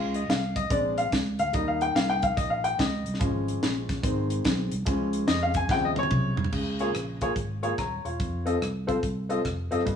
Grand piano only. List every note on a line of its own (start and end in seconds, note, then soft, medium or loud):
0.00 0.17 G#3 medium
0.00 0.18 C#4 soft
0.00 0.18 F4 medium
0.00 0.16 F5 medium
0.15 0.28 D#5 medium
0.29 0.57 F5 medium
0.56 0.71 D#5 medium
0.70 1.01 G#3 medium
0.70 1.02 C4 soft
0.70 1.02 D4 medium
0.70 0.99 D5 medium
0.98 1.11 F5 medium
1.39 1.53 F5 loud
1.53 3.16 G3 soft
1.53 3.16 A#3 soft
1.53 3.17 D#4 medium
1.53 1.68 D#5 medium
1.68 1.81 F5 medium
1.82 1.95 G5 medium
1.96 2.10 F5 medium
2.10 2.24 G5 loud
2.23 2.38 F5 medium
2.37 2.50 D#5 medium
2.50 2.63 F5 medium
2.64 2.77 G5 loud
2.79 3.85 D#5 medium
3.19 3.99 F3 medium
3.19 3.99 G#3 soft
3.19 4.00 C#4 medium
4.02 4.68 D#3 medium
4.02 4.68 G#3 soft
4.02 4.68 C4 medium
4.85 5.65 F3 soft
4.85 5.65 G#3 medium
4.85 5.66 C#4 medium
5.27 5.41 D#5 medium
5.43 5.57 F5 loud
5.57 5.70 G#5 loud
5.69 6.49 C3 medium
5.69 6.49 C#3 medium
5.69 6.49 F3 soft
5.69 6.49 G3 soft
5.69 5.85 G5 loud
5.85 5.90 D#5 medium
5.99 6.50 C#5 medium
6.52 7.17 C#3 medium
6.80 6.89 A#3 medium
6.80 6.89 F4 medium
6.80 6.89 G#4 medium
6.80 6.89 C#5 medium
7.22 7.31 A#3 medium
7.22 7.30 F4 medium
7.22 7.31 G#4 medium
7.22 7.31 C#5 medium
7.63 7.72 A#3 medium
7.63 7.72 F4 medium
7.63 7.72 G#4 medium
7.63 7.72 C#5 medium
7.78 8.03 C#5 medium
7.78 8.04 A#5 medium
8.05 8.44 F4 soft
8.05 8.45 C#5 medium
8.46 8.55 C4 medium
8.46 8.55 F4 medium
8.46 8.55 A4 medium
8.46 8.55 D#5 medium
8.87 8.97 C4 medium
8.87 8.97 F4 medium
8.87 8.97 A4 medium
8.87 8.97 C5 medium
9.29 9.39 C4 medium
9.29 9.39 F4 medium
9.29 9.39 A4 medium
9.29 9.39 D#5 medium
9.71 9.80 C4 medium
9.71 9.81 F4 medium
9.71 9.81 A4 medium
9.71 9.81 D#5 medium
9.85 9.96 G2 medium